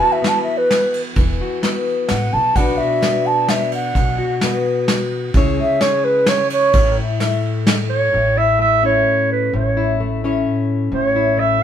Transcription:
0.00 1.15 E3 medium
0.00 0.22 B3 soft
0.00 1.15 E4 medium
0.00 1.19 F#4 medium
0.00 2.58 B4 medium
0.00 0.14 A5 medium
0.12 0.30 E5 medium
0.22 1.62 B3 medium
0.22 snare medium
0.22 ride soft
0.28 0.41 A5 medium
0.43 0.59 E5 medium
0.58 1.02 B4 medium
0.71 snare medium
0.71 ride soft
0.94 ride soft
1.16 1.39 E1 medium
1.16 2.53 E3 medium
1.16 kick medium
1.16 ride soft
1.41 2.57 F#4 medium
1.63 2.56 B3 medium
1.63 snare medium
1.63 ride soft
2.08 2.31 A1 medium
2.08 2.35 F#5 medium
2.08 snare medium
2.08 ride soft
2.33 2.54 B1 medium
2.33 2.58 A5 medium
2.56 2.78 B1 medium
2.56 3.93 B2 medium
2.56 3.01 B3 soft
2.56 3.93 D4 medium
2.56 2.80 F#4 soft
2.56 3.94 B4 soft
2.56 2.79 F#5 medium
2.56 kick medium
2.56 ride medium
2.78 3.93 F#4 medium
2.78 3.28 E5 medium
3.01 3.92 B3 medium
3.01 snare medium
3.01 ride soft
3.26 3.51 A5 medium
3.48 3.72 E5 medium
3.48 snare medium
3.48 ride medium
3.72 4.64 F#5 medium
3.72 ride soft
3.95 4.18 B1 medium
3.95 5.32 B2 medium
3.95 kick medium
3.95 ride soft
4.18 5.32 F#4 medium
4.41 5.33 B3 medium
4.41 snare medium
4.41 ride soft
4.88 snare medium
4.88 ride soft
5.34 5.57 C#2 medium
5.34 6.71 C#3 medium
5.34 5.80 G#3 medium
5.34 6.98 E4 medium
5.34 5.59 G#4 medium
5.34 8.87 C#5 medium
5.34 kick medium
5.34 ride soft
5.60 6.72 G#4 medium
5.60 5.83 E5 medium
5.81 6.72 G#3 medium
5.81 6.06 C#5 medium
5.81 snare medium
5.81 ride soft
6.04 6.31 B4 medium
6.26 6.51 C#5 medium
6.26 snare medium
6.26 ride medium
6.50 6.97 C#5 medium
6.50 ride medium
6.73 6.96 A1 loud
6.73 8.11 A2 medium
6.73 kick loud
6.73 ride medium
6.98 8.36 E4 medium
7.20 8.10 A3 medium
7.20 snare medium
7.20 ride soft
7.67 snare medium
7.67 ride medium
7.90 8.39 C#5 medium
8.12 9.03 A1 medium
8.12 9.53 A2 medium
8.37 8.84 E4 soft
8.37 8.60 E5 medium
8.59 10.00 A3 medium
8.59 8.82 E5 medium
8.83 10.24 C#4 medium
8.83 9.77 E4 medium
8.83 9.28 C#5 medium
9.32 9.52 B4 medium
9.53 10.42 A1 medium
9.53 10.92 A2 medium
9.53 9.97 C#5 medium
9.77 10.24 E4 medium
10.00 11.37 A3 medium
10.24 11.62 C#4 medium
10.24 11.15 E4 medium
10.24 11.63 C#5 medium
10.92 11.63 A1 medium
10.92 11.63 A2 medium
10.92 11.41 C#5 medium
11.16 11.62 E4 soft
11.37 11.63 A3 medium
11.37 11.63 E5 medium

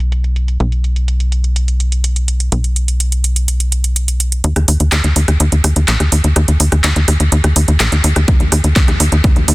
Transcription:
0.00 0.58 B1 medium
0.00 closed hi-hat soft
0.12 closed hi-hat medium
0.24 closed hi-hat soft
0.36 closed hi-hat soft
0.48 closed hi-hat soft
0.60 2.50 B1 medium
0.60 closed hi-hat medium
0.72 closed hi-hat soft
0.84 closed hi-hat medium
0.96 closed hi-hat soft
1.08 closed hi-hat medium
1.20 closed hi-hat soft
1.32 closed hi-hat medium
1.44 closed hi-hat soft
1.56 closed hi-hat medium
1.68 closed hi-hat soft
1.80 closed hi-hat medium
1.92 closed hi-hat soft
2.04 closed hi-hat medium
2.16 closed hi-hat soft
2.28 closed hi-hat medium
2.40 closed hi-hat soft
2.52 4.42 B1 medium
2.52 closed hi-hat medium
2.64 closed hi-hat soft
2.76 closed hi-hat medium
2.88 closed hi-hat soft
3.00 closed hi-hat medium
3.12 closed hi-hat soft
3.24 closed hi-hat medium
3.36 closed hi-hat soft
3.48 closed hi-hat medium
3.60 closed hi-hat soft
3.72 closed hi-hat medium
3.84 closed hi-hat soft
3.96 closed hi-hat medium
4.08 closed hi-hat soft
4.20 closed hi-hat medium
4.32 closed hi-hat soft
4.44 4.53 D#2 medium
4.44 closed hi-hat medium
4.56 4.65 D#2 medium
4.56 cross-stick soft
4.56 closed hi-hat soft
4.68 4.77 D#2 medium
4.68 open hi-hat loud
4.80 4.89 D#2 medium
4.80 closed hi-hat soft
4.92 5.01 D#2 loud
4.92 cross-stick soft
4.92 clap loud
4.92 closed hi-hat medium
5.04 5.13 D#2 medium
5.04 closed hi-hat soft
5.16 5.25 D#2 medium
5.16 open hi-hat medium
5.28 5.37 D#2 medium
5.28 cross-stick soft
5.28 closed hi-hat soft
5.40 5.49 D#2 loud
5.40 closed hi-hat medium
5.52 5.61 D#2 medium
5.52 closed hi-hat soft
5.64 5.73 D#2 medium
5.64 cross-stick soft
5.64 open hi-hat loud
5.76 5.85 D#2 medium
5.76 closed hi-hat soft
5.88 5.97 A#1 loud
5.88 clap loud
5.88 closed hi-hat medium
6.00 6.09 D#2 medium
6.00 cross-stick soft
6.00 closed hi-hat soft
6.12 6.21 D#2 medium
6.12 open hi-hat medium
6.24 6.33 D#2 medium
6.24 closed hi-hat soft
6.36 6.45 D#2 loud
6.36 cross-stick soft
6.36 closed hi-hat medium
6.48 6.57 D#2 medium
6.48 closed hi-hat soft
6.60 6.69 D#2 medium
6.60 open hi-hat loud
6.72 6.81 D#2 medium
6.72 cross-stick soft
6.72 closed hi-hat soft
6.84 6.93 D#2 loud
6.84 clap loud
6.84 closed hi-hat medium
6.96 7.05 D#2 medium
6.96 closed hi-hat soft
7.08 7.17 D#2 medium
7.08 cross-stick soft
7.08 open hi-hat medium
7.20 7.29 D#2 medium
7.20 closed hi-hat soft
7.32 7.41 D#2 loud
7.32 closed hi-hat medium
7.44 7.53 D#2 medium
7.44 cross-stick soft
7.44 closed hi-hat soft
7.56 7.65 D#2 loud
7.56 open hi-hat loud
7.68 7.77 D#2 medium
7.68 closed hi-hat soft
7.80 7.89 A#1 loud
7.80 cross-stick medium
7.80 clap loud
7.80 closed hi-hat medium
7.92 8.01 D#2 medium
7.92 closed hi-hat soft
8.04 8.13 D#2 loud
8.04 open hi-hat medium
8.16 8.25 D#2 medium
8.16 cross-stick soft
8.16 closed hi-hat soft
8.28 8.37 D#2 loud
8.28 kick loud
8.28 closed hi-hat medium
8.40 8.49 D#2 medium
8.40 closed hi-hat soft
8.52 8.61 D#2 medium
8.52 cross-stick medium
8.52 open hi-hat loud
8.64 8.73 D#2 medium
8.64 closed hi-hat soft
8.76 8.85 D#2 loud
8.76 kick loud
8.76 clap loud
8.76 closed hi-hat medium
8.88 8.97 D#2 medium
8.88 cross-stick medium
8.88 closed hi-hat soft
9.00 9.09 D#2 medium
9.00 open hi-hat loud
9.12 9.21 D#2 medium
9.12 closed hi-hat soft
9.24 9.33 D#2 loud
9.24 kick loud
9.24 cross-stick soft
9.24 closed hi-hat medium
9.36 9.45 D#2 medium
9.36 closed hi-hat soft
9.48 9.55 D#2 medium
9.48 open hi-hat loud

